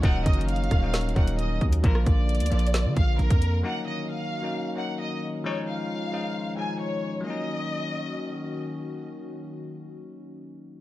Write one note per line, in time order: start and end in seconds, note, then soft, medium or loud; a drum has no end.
0.03 0.25 D#1 loud
0.03 1.82 D#3 medium
0.03 0.24 F#3 loud
0.03 0.24 A#3 medium
0.03 1.82 C#4 medium
0.03 0.25 C#4 loud
0.03 0.25 D#4 loud
0.03 1.82 F#4 medium
0.03 0.21 F#5 loud
0.03 kick loud
0.03 closed hi-hat medium
0.26 0.69 F#1 loud
0.26 0.44 D#5 medium
0.26 kick loud
0.26 closed hi-hat medium
0.34 0.65 F#3 medium
0.34 0.65 A#3 medium
0.34 closed hi-hat medium
0.38 0.66 C#4 medium
0.38 0.66 D#4 medium
0.38 closed hi-hat medium
0.48 1.12 F5 medium
0.48 closed hi-hat medium
0.56 closed hi-hat medium
0.64 closed hi-hat soft
0.71 1.14 D#1 loud
0.71 kick medium
0.71 cross-stick medium
0.71 closed hi-hat medium
0.81 1.03 F#3 medium
0.81 1.03 A#3 medium
0.81 1.04 C#4 medium
0.81 1.04 D#4 medium
0.94 snare loud
0.94 closed hi-hat medium
1.01 closed hi-hat medium
1.09 closed hi-hat soft
1.15 1.60 D#1 loud
1.15 1.58 F#3 medium
1.15 1.58 A#3 medium
1.15 1.59 C#4 medium
1.15 1.59 D#4 medium
1.15 1.34 F#5 medium
1.15 kick loud
1.15 closed hi-hat soft
1.28 closed hi-hat medium
1.39 1.57 D#5 medium
1.39 closed hi-hat medium
1.61 1.83 D#2 loud
1.61 kick loud
1.61 closed hi-hat soft
1.73 closed hi-hat medium
1.83 2.06 A#1 loud
1.83 3.63 D3 medium
1.83 2.26 F3 medium
1.83 2.26 A#3 loud
1.83 3.63 A#3 medium
1.83 2.27 D4 medium
1.83 3.63 F4 medium
1.83 2.27 F4 loud
1.83 2.02 A#4 medium
1.83 kick loud
1.83 closed hi-hat medium
1.95 cross-stick medium
2.06 2.42 A#1 loud
2.06 2.93 D5 medium
2.06 kick loud
2.06 closed hi-hat medium
2.29 closed hi-hat medium
2.35 closed hi-hat medium
2.40 2.51 D2 loud
2.40 closed hi-hat medium
2.46 3.07 F3 medium
2.46 closed hi-hat medium
2.51 2.87 A#1 loud
2.51 3.07 A#3 medium
2.51 3.08 D4 medium
2.51 3.08 F4 medium
2.51 closed hi-hat medium
2.59 closed hi-hat medium
2.67 closed hi-hat medium
2.74 snare loud
2.74 closed hi-hat medium
2.86 2.96 D3 loud
2.97 3.18 A#1 loud
2.97 3.15 F5 loud
2.97 kick loud
2.97 closed hi-hat medium
3.19 3.30 A#1 loud
3.19 3.62 A#4 medium
3.19 closed hi-hat soft
3.30 3.63 F2 loud
3.30 kick loud
3.30 closed hi-hat medium
3.42 closed hi-hat medium
3.63 7.22 D#3 medium
3.63 4.13 F#3 loud
3.63 4.13 A#3 loud
3.63 5.43 C#4 medium
3.63 4.14 C#4 medium
3.63 4.14 D#4 loud
3.63 5.43 F#4 medium
3.63 3.82 F#5 loud
3.87 4.05 D#5 medium
4.09 4.73 F5 medium
4.42 4.64 F#3 medium
4.42 4.64 A#3 medium
4.42 4.65 C#4 medium
4.42 4.65 D#4 medium
4.76 5.19 F#3 medium
4.76 5.19 A#3 medium
4.76 5.19 C#4 medium
4.76 5.20 D#4 medium
4.76 4.95 F#5 medium
5.00 5.18 D#5 medium
5.44 5.87 F3 medium
5.44 5.87 G#3 medium
5.44 7.23 C#4 medium
5.44 5.87 C#4 medium
5.44 5.88 D#4 loud
5.44 7.23 F4 medium
5.44 5.63 C#5 medium
5.68 6.54 F5 medium
6.11 6.40 F3 medium
6.11 6.40 G#3 medium
6.11 6.41 C#4 medium
6.11 6.41 D#4 medium
6.56 6.99 F3 medium
6.56 7.00 G#3 medium
6.56 7.00 C#4 medium
6.56 7.00 D#4 medium
6.56 6.76 G#5 medium
6.80 7.23 C#5 medium
7.21 10.81 F#3 medium
7.21 10.81 A#3 medium
7.25 10.81 D#3 medium
7.25 10.81 C#4 medium
7.25 10.81 F#4 medium
7.25 8.57 D#5 medium
7.30 10.81 D#4 medium